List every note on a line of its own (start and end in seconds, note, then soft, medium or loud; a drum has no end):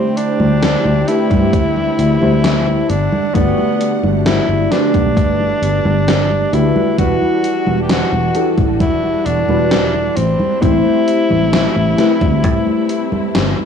0.00 6.95 D3 medium
0.00 1.02 A3 medium
0.00 6.95 A3 medium
0.00 0.19 C4 medium
0.00 2.87 C4 medium
0.00 1.02 D4 medium
0.00 1.02 E4 medium
0.00 2.86 E4 medium
0.00 1.03 G4 medium
0.00 2.86 G4 medium
0.00 1.03 C5 loud
0.17 1.09 D4 loud
0.17 closed hi-hat medium
0.40 0.75 D2 medium
0.40 high conga medium
0.63 snare loud
0.63 closed hi-hat medium
0.63 high conga soft
0.85 1.03 D2 medium
0.85 high conga soft
1.07 1.39 A3 medium
1.07 1.39 D4 medium
1.07 1.39 E4 medium
1.07 2.91 E4 loud
1.07 1.39 G4 medium
1.07 1.40 B4 medium
1.07 closed hi-hat medium
1.31 1.53 G2 medium
1.31 kick loud
1.31 closed hi-hat soft
1.31 high conga medium
1.53 1.88 D2 medium
1.53 kick loud
1.53 closed hi-hat medium
1.53 high conga soft
1.76 high conga soft
1.99 2.16 D2 medium
1.99 closed hi-hat medium
2.21 2.81 D2 medium
2.21 2.87 A3 medium
2.21 2.87 D4 medium
2.21 2.87 E4 medium
2.21 2.87 G4 medium
2.21 2.87 C5 medium
2.21 high conga medium
2.44 snare loud
2.44 closed hi-hat medium
2.44 high conga soft
2.67 high conga soft
2.90 3.07 G1 medium
2.90 10.13 G3 medium
2.90 3.36 D4 medium
2.90 4.70 F#5 medium
2.90 closed hi-hat medium
3.12 high conga medium
3.33 3.53 G1 loud
3.33 4.65 A3 medium
3.33 3.99 B3 loud
3.33 4.65 D4 medium
3.33 4.66 F#4 medium
3.33 4.66 G4 medium
3.33 4.67 D5 loud
3.33 kick loud
3.33 closed hi-hat medium
3.33 high conga soft
3.58 high conga soft
3.81 closed hi-hat medium
4.03 4.38 G1 medium
4.03 high conga medium
4.25 4.73 E4 loud
4.25 snare loud
4.25 closed hi-hat medium
4.25 high conga soft
4.49 4.66 G1 medium
4.49 high conga soft
4.70 6.48 A3 medium
4.70 6.48 D4 medium
4.70 6.55 D4 loud
4.70 6.49 F#4 medium
4.70 6.49 G4 medium
4.70 6.49 B4 medium
4.70 snare medium
4.70 closed hi-hat medium
4.94 5.17 B1 loud
4.94 kick loud
4.94 closed hi-hat soft
4.94 high conga medium
5.17 5.52 G1 medium
5.17 kick loud
5.17 closed hi-hat medium
5.17 high conga soft
5.40 high conga soft
5.62 5.80 G1 medium
5.62 closed hi-hat medium
5.85 6.45 G1 medium
5.85 high conga medium
6.08 snare loud
6.08 closed hi-hat medium
6.08 high conga soft
6.31 high conga soft
6.52 6.71 D2 loud
6.52 6.93 A3 medium
6.52 6.93 D4 medium
6.52 6.98 E4 loud
6.52 6.93 F#4 medium
6.52 6.93 G4 medium
6.52 6.94 B4 medium
6.52 closed hi-hat medium
6.76 high conga medium
6.97 7.16 E1 loud
6.97 10.14 E3 medium
6.97 8.29 G3 medium
6.97 8.29 D4 medium
6.97 10.14 D4 medium
6.97 8.30 E4 medium
6.97 7.78 F#4 loud
6.97 10.14 F#4 medium
6.97 8.30 F#4 medium
6.97 8.30 B4 loud
6.97 kick loud
6.97 closed hi-hat medium
6.97 high conga soft
7.21 high conga soft
7.44 closed hi-hat medium
7.67 8.02 E1 medium
7.67 high conga medium
7.83 7.91 G4 medium
7.89 8.54 F#4 loud
7.89 snare loud
7.89 closed hi-hat medium
7.89 high conga soft
8.12 8.30 E1 loud
8.12 high conga soft
8.34 8.66 G3 medium
8.34 8.66 D4 medium
8.34 8.66 E4 medium
8.34 8.67 F#4 medium
8.34 8.67 A4 medium
8.34 closed hi-hat medium
8.58 8.80 A1 medium
8.58 kick loud
8.58 closed hi-hat soft
8.58 high conga medium
8.80 9.15 E1 medium
8.80 9.27 E4 loud
8.80 kick loud
8.80 closed hi-hat medium
8.80 high conga soft
9.03 high conga soft
9.26 9.44 E1 medium
9.26 10.18 D4 loud
9.26 closed hi-hat medium
9.48 10.08 E1 loud
9.48 10.14 G3 medium
9.48 10.14 D4 medium
9.48 10.14 E4 medium
9.48 10.14 F#4 medium
9.48 10.15 B4 medium
9.48 high conga medium
9.71 snare loud
9.71 closed hi-hat medium
9.71 high conga soft
9.94 high conga soft
10.16 10.34 A1 medium
10.16 13.65 C3 medium
10.16 13.65 G3 medium
10.16 13.65 A3 medium
10.16 10.63 C4 loud
10.16 13.65 E4 medium
10.16 closed hi-hat medium
10.40 high conga medium
10.61 10.80 A1 loud
10.61 11.92 A3 medium
10.61 11.93 C4 medium
10.61 13.53 E4 loud
10.61 11.93 E4 medium
10.61 11.94 G4 medium
10.61 11.94 C5 loud
10.61 kick loud
10.61 closed hi-hat medium
10.61 high conga soft
10.85 high conga soft
11.08 closed hi-hat medium
11.31 11.66 A1 medium
11.31 high conga medium
11.53 snare loud
11.53 closed hi-hat medium
11.53 high conga soft
11.76 11.94 A1 loud
11.76 high conga soft
11.97 13.65 A3 medium
11.97 13.65 C4 medium
11.97 13.65 E4 medium
11.97 13.65 G4 medium
11.97 13.65 B4 medium
11.97 snare medium
11.97 closed hi-hat medium
12.21 12.44 D2 medium
12.21 kick loud
12.21 closed hi-hat soft
12.21 high conga medium
12.44 12.62 A2 medium
12.44 kick loud
12.44 closed hi-hat medium
12.44 high conga soft
12.67 high conga soft
12.89 closed hi-hat medium
13.12 muted fingered electric bass stroke soft
13.12 high conga medium
13.35 13.53 G1 medium
13.35 snare loud
13.35 closed hi-hat medium
13.35 high conga soft
13.58 high conga soft